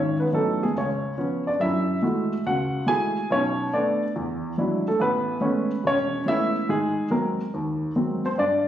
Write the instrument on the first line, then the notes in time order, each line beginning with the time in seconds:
grand piano
Already playing: G#1 G#2 C#4 C#5
0.20 B3 B4
0.33 E3 F#3 A3 B3 C#4 D#4 A4
0.63 G#3 G#4
0.75 C#2 C#5
0.80 C#4
1.17 F3 B3 C#4
1.47 D4 D5
1.60 F#2 E4 E5
2.02 G#3 A3 E4 F#4
2.46 C#2 F#4 F#5
2.86 G#3 A3 E4 F#4 G#4 G#5
3.30 B1 B2 C#4 C#5
3.73 A3 B3 D4 D5
4.16 E2
4.58 F#3 G#3 D4 E4
4.88 A3 A4
5.00 A1 B3 B4
5.41 G#3 A3 B3 C#4
5.84 E1 C#4 C#5
6.26 G#3 A3 B3 C#4 E4 E5
6.69 G#2 G#3 G#4
7.10 F#3 G#3 A#3 C4 A#4
7.54 D#2
7.96 F#3 G#3 A#3 C4
8.25 C4 C5
8.38 G2 D4 D5